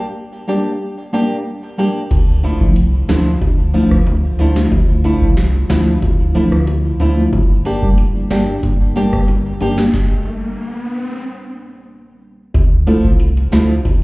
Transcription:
0.47 synth stab G3 A#3 D4 G4, nylon-string guitar A#3 D4 G4
1.12 synth stab G3 A#3 D4 G4, nylon-string guitar A#3 D4 G4
1.78 synth stab G3 A#3 D4 G4, nylon-string guitar A#3 D4 G4
2.11 sub bass D2, ambient pad D3 A3 E4 F4, kick, closed hi-hat, crash, high bongo
2.43 nylon-string guitar F3 A3 E4, synth stab D4 E4, closed hi-hat
2.60 sub bass C2, synth stab F3 A3 D4 E4, kick
2.76 closed hi-hat
3.08 sub bass D2, synth stab F3 A3 D4 E4, nylon-string guitar F3 A3 E4, snare, closed hi-hat, low bongo
3.41 sub bass D2, kick, closed hi-hat, high bongo
3.73 synth stab F3 A3 D4 E4, nylon-string guitar F3 A3 E4, closed hi-hat
3.91 sub bass D2, kick, cross-stick
4.07 closed hi-hat, high bongo
4.39 sub bass D2, nylon-string guitar F3 A3 E4, synth stab D4 E4, closed hi-hat, low bongo
4.56 synth stab F3 A3 D4 E4, snare
4.72 sub bass D2, kick, closed hi-hat, high bongo
5.04 nylon-string guitar F3 A3 E4, synth stab D4 E4, closed hi-hat
5.21 sub bass C2, synth stab F3 A3 D4 E4, kick
5.37 snare, closed hi-hat
5.69 sub bass D2, synth stab F3 A3 D4 E4, nylon-string guitar F3 A3 E4, snare, closed hi-hat, low bongo
6.02 sub bass D2, kick, closed hi-hat, high bongo
6.34 synth stab F3 A3 D4 E4, nylon-string guitar F3 A3 E4, closed hi-hat
6.52 sub bass D2, cross-stick
6.67 closed hi-hat, high bongo
7.00 sub bass D2, nylon-string guitar F3 A3 E4, synth stab D4 E4, closed hi-hat, low bongo
7.17 synth stab F3 A3 D4 E4
7.33 sub bass G1, ambient pad G3 A#3 D4, kick, closed hi-hat, high bongo, riser
7.65 nylon-string guitar A#3 D4 G4, synth stab D4 G4, closed hi-hat
7.82 sub bass F1, synth stab G3 A#3 D4 G4, kick
7.98 closed hi-hat
8.30 sub bass G1, synth stab G3 A#3 D4 G4, nylon-string guitar A#3 D4 G4, snare, closed hi-hat, low bongo
8.63 sub bass G1, kick, closed hi-hat, high bongo
8.95 synth stab G3 A#3 D4 G4, nylon-string guitar A#3 D4 G4, closed hi-hat
9.13 sub bass G1, kick, cross-stick
9.28 closed hi-hat, high bongo
9.60 sub bass G1, nylon-string guitar A#3 D4 G4, synth stab D4 G4, closed hi-hat, low bongo
9.78 synth stab G3 A#3 D4 G4, snare
9.93 kick, snare
12.54 sub bass D2, ambient pad D3 A3 E4 F4, kick, closed hi-hat, high bongo
12.87 nylon-string guitar F3 A3 E4, synth stab A3 D4 E4 F4 A4, closed hi-hat
13.04 sub bass C2, kick
13.20 closed hi-hat
13.37 closed hi-hat
13.52 sub bass D2, nylon-string guitar F3 A3 E4, synth stab A3 D4 E4 F4 A4, snare, closed hi-hat, high bongo
13.85 sub bass D2, kick, closed hi-hat, high bongo

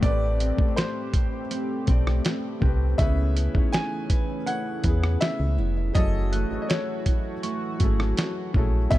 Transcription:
Already playing: steel-string acoustic guitar D4 A4 C#5
0.01 fm bass A1, felt piano A2 A3 C4 G4, steel-string acoustic guitar A3, analog synth pad A3 C4 G4, grand piano D5, kick, closed hi-hat
0.06 felt piano B4
0.40 steel-string acoustic guitar C4, closed hi-hat
0.57 fm bass B1, felt piano A2 A3 C4 G4, kick
0.62 felt piano A4
0.68 felt piano C5
0.76 grand piano C5, snare, closed hi-hat
1.14 steel-string acoustic guitar G4, kick, closed hi-hat
1.51 steel-string acoustic guitar C4, closed hi-hat
1.86 fm bass B1, felt piano A2 A3 C4 G4, steel-string acoustic guitar C4 G4, kick, closed hi-hat
1.91 felt piano D5
2.07 cross-stick
2.25 snare, closed hi-hat
2.60 fm bass C2, felt piano A2 A3 C4 G4, steel-string acoustic guitar C4, celesta G6, kick
2.65 felt piano B4
2.97 fm bass C#2, felt piano C#3 B3 C#4 E4, analog synth pad E3 C#4, steel-string acoustic guitar C#4, grand piano E5, kick, closed hi-hat
3.02 felt piano B4
3.36 steel-string acoustic guitar E4, closed hi-hat
3.53 fm bass E2, felt piano C#3 C#4 D#4 E4, kick
3.58 felt piano C#5
3.73 grand piano G#5, snare, closed hi-hat
4.10 steel-string acoustic guitar B4, kick, closed hi-hat
4.46 steel-string acoustic guitar E4, grand piano F#5, celesta G#6, closed hi-hat
4.83 fm bass E2, felt piano C#3 B3 C#4 E4, steel-string acoustic guitar E4 B4, kick, closed hi-hat
4.88 felt piano G#4
5.04 cross-stick
5.21 grand piano E5, snare, closed hi-hat
5.40 fm bass C#2
5.58 fm bass F1, steel-string acoustic guitar E4
5.93 fm bass F#1, analog synth pad E3 A3 F#4, felt piano F#3 C#4 E4 G#4, steel-string acoustic guitar F#3, grand piano D#5, celesta A6, kick, closed hi-hat
5.98 felt piano A4
6.32 steel-string acoustic guitar A3, celesta F#6, closed hi-hat
6.49 fm bass G#1, felt piano F#3 C#4 E4 G#4
6.54 felt piano A4
6.62 grand piano D#5
6.69 grand piano C#5, snare, closed hi-hat
7.06 steel-string acoustic guitar E4, kick, closed hi-hat
7.43 steel-string acoustic guitar A3, celesta C#6, closed hi-hat
7.79 fm bass G#1, felt piano F#3 C#4 E4 G#4, steel-string acoustic guitar A3 E4 G#4, kick, closed hi-hat
7.84 felt piano A4
8.00 cross-stick
8.17 celesta C#6, snare, closed hi-hat
8.53 fm bass A#1, felt piano F#3 C#4 E4 G#4, steel-string acoustic guitar A3, kick
8.58 felt piano A4
8.90 fm bass B1, felt piano B2 B3 D4 A4, analog synth pad D3 A3, steel-string acoustic guitar B3, grand piano E5, kick, closed hi-hat
8.95 felt piano C#5

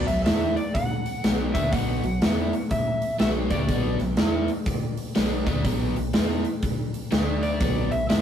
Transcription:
0.07 fingered electric bass B1, overdriven electric guitar B2 F#3, electric slide guitar E5, snare, open hi-hat
0.25 fingered electric bass E2, overdriven electric guitar E3 B3 E4, electric slide guitar E5, snare, open hi-hat
0.56 electric slide guitar D5, open hi-hat
0.74 electric slide guitar F#5, kick, open hi-hat
1.06 open hi-hat
1.23 fingered electric bass B1, overdriven electric guitar B2 F#3 B3, snare, open hi-hat
1.54 fingered electric bass D2, overdriven electric guitar D3 A3 D4, electric slide guitar E5, kick, open hi-hat
1.72 fingered electric bass B1, overdriven electric guitar B2 F#3 B3, electric slide guitar F#5, kick, open hi-hat
2.04 fingered electric bass B1, overdriven electric guitar B2 F#3, open hi-hat
2.21 fingered electric bass E2, overdriven electric guitar E3 B3 E4, snare, open hi-hat
2.53 open hi-hat
2.71 electric slide guitar E5, kick, open hi-hat
3.02 open hi-hat
3.19 fingered electric bass B1, overdriven electric guitar B2 F#3 B3, electric slide guitar E5, snare, open hi-hat
3.50 fingered electric bass D2, overdriven electric guitar D3 A3 D4, electric slide guitar D5, kick, open hi-hat
3.69 fingered electric bass B1, overdriven electric guitar B2 F#3 B3, kick, open hi-hat
4.00 fingered electric bass B1, overdriven electric guitar B2 F#3, snare, open hi-hat
4.17 fingered electric bass E2, overdriven electric guitar E3 B3 E4, snare, open hi-hat
4.48 open hi-hat
4.66 kick, open hi-hat
4.97 open hi-hat
5.15 fingered electric bass B1, overdriven electric guitar B2 F#3 B3, snare, open hi-hat
5.46 fingered electric bass D2, overdriven electric guitar D3 A3 D4, kick, open hi-hat
5.64 fingered electric bass B1, overdriven electric guitar B2 F#3 B3, kick, open hi-hat
5.96 fingered electric bass B1, overdriven electric guitar B2 F#3, open hi-hat
6.13 fingered electric bass E2, overdriven electric guitar E3 B3 E4, snare, open hi-hat
6.45 open hi-hat
6.62 kick, open hi-hat
6.94 open hi-hat
7.11 fingered electric bass D2, overdriven electric guitar D3 A3 D4, snare, open hi-hat
7.43 electric slide guitar D5, open hi-hat
7.60 fingered electric bass B1, overdriven electric guitar B2 F#3 B3, kick, open hi-hat
7.91 fingered electric bass B1, overdriven electric guitar B2 F#3, electric slide guitar E5, open hi-hat
8.09 fingered electric bass E2, overdriven electric guitar E3 B3 E4, electric slide guitar E5, snare, open hi-hat

